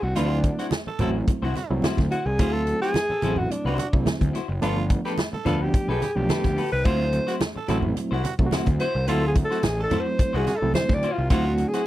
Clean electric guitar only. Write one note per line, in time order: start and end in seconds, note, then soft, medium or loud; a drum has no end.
0.02 muted clean electric guitar stroke soft
0.16 0.36 E4 medium
0.16 0.31 F#4 medium
0.16 0.29 C5 medium
0.30 muted clean electric guitar stroke soft
0.43 muted clean electric guitar stroke soft
0.59 0.70 E4 medium
0.59 0.69 F#4 medium
0.59 0.69 C5 medium
0.72 muted clean electric guitar stroke soft
0.88 muted clean electric guitar stroke soft
1.00 1.15 E4 medium
1.00 1.15 F#4 medium
1.00 1.15 C5 medium
1.16 muted clean electric guitar stroke soft
1.29 muted clean electric guitar stroke soft
1.42 1.55 E4 medium
1.42 1.56 F#4 medium
1.42 1.56 C5 medium
1.56 muted clean electric guitar stroke soft
1.71 muted clean electric guitar stroke soft
1.84 1.98 E4 medium
1.84 1.99 F#4 medium
1.84 1.98 C5 medium
1.99 muted clean electric guitar stroke soft
2.11 2.23 E4 medium
2.11 2.23 F#4 medium
2.11 2.24 C5 medium
2.27 muted clean electric guitar stroke medium
2.39 2.54 E4 medium
2.39 2.54 F#4 medium
2.39 2.53 C5 medium
2.54 muted clean electric guitar stroke medium
2.67 muted clean electric guitar stroke soft
2.82 2.93 E4 medium
2.82 2.93 F#4 medium
2.82 2.92 C5 medium
2.95 muted clean electric guitar stroke soft
3.10 muted clean electric guitar stroke soft
3.23 3.38 E4 medium
3.23 3.38 F#4 medium
3.23 3.37 C5 loud
3.38 muted clean electric guitar stroke medium
3.52 muted clean electric guitar stroke soft
3.66 3.78 E4 medium
3.66 3.78 F#4 medium
3.66 3.79 C5 medium
3.79 muted clean electric guitar stroke soft
3.93 muted clean electric guitar stroke soft
4.06 muted clean electric guitar stroke soft
4.34 4.46 E4 medium
4.34 4.46 F#4 medium
4.34 4.47 C5 medium
4.48 muted clean electric guitar stroke soft
4.62 4.77 F4 medium
4.62 4.77 A4 medium
4.62 4.76 B4 medium
4.77 muted clean electric guitar stroke soft
4.91 muted clean electric guitar stroke soft
5.05 5.16 F4 medium
5.05 5.16 A4 medium
5.05 5.16 B4 medium
5.19 muted clean electric guitar stroke soft
5.33 muted clean electric guitar stroke soft
5.45 5.60 F4 medium
5.45 5.61 A4 medium
5.45 5.60 B4 medium
5.61 muted clean electric guitar stroke soft
5.74 muted clean electric guitar stroke soft
5.89 6.00 F4 medium
5.89 6.01 A4 medium
5.89 6.01 B4 medium
6.01 muted clean electric guitar stroke soft
6.17 muted clean electric guitar stroke medium
6.29 6.44 F4 medium
6.29 6.44 A4 medium
6.29 6.43 B4 medium
6.44 muted clean electric guitar stroke soft
6.57 6.69 F4 medium
6.57 6.69 A4 medium
6.57 6.70 B4 medium
6.72 muted clean electric guitar stroke soft
6.84 7.00 E4 medium
6.84 6.99 F#4 medium
6.84 6.98 C5 medium
7.00 muted clean electric guitar stroke soft
7.12 muted clean electric guitar stroke soft
7.27 7.39 E4 medium
7.27 7.38 F#4 medium
7.27 7.38 C5 medium
7.40 muted clean electric guitar stroke soft
7.56 muted clean electric guitar stroke soft
7.68 7.83 E4 loud
7.68 7.84 F#4 medium
7.68 7.82 C5 medium
7.84 muted clean electric guitar stroke medium
7.96 muted clean electric guitar stroke soft
8.11 8.23 E4 medium
8.11 8.24 F#4 medium
8.11 8.24 C5 medium
8.24 muted clean electric guitar stroke soft
8.39 muted clean electric guitar stroke soft
8.52 8.67 E4 medium
8.52 8.67 F#4 medium
8.52 8.66 C5 medium
8.67 muted clean electric guitar stroke medium
8.80 8.92 E4 medium
8.80 8.92 F#4 medium
8.80 8.92 C5 medium
8.95 muted clean electric guitar stroke medium
9.08 9.23 E4 medium
9.08 9.23 F#4 medium
9.08 9.22 C5 medium
9.23 muted clean electric guitar stroke soft
9.36 muted clean electric guitar stroke soft
9.50 9.62 E4 medium
9.50 9.61 F#4 medium
9.50 9.61 C5 medium
9.63 muted clean electric guitar stroke soft
9.78 muted clean electric guitar stroke soft
9.91 10.06 E4 medium
9.91 10.06 F#4 medium
9.91 10.05 C5 medium
10.06 muted clean electric guitar stroke soft
10.19 muted clean electric guitar stroke soft
10.33 10.46 E4 medium
10.33 10.46 F#4 medium
10.33 10.47 C5 medium
10.47 muted clean electric guitar stroke soft
10.61 muted clean electric guitar stroke soft
10.75 muted clean electric guitar stroke soft
10.90 muted clean electric guitar stroke soft
11.03 11.17 E4 medium
11.03 11.18 F#4 medium
11.03 11.16 C5 loud
11.18 muted clean electric guitar stroke soft
11.30 11.45 E4 medium
11.30 11.46 F#4 medium
11.30 11.44 C5 loud
11.46 muted clean electric guitar stroke medium
11.59 muted clean electric guitar stroke soft
11.74 11.84 E4 medium
11.74 11.84 F#4 medium
11.74 11.84 C5 medium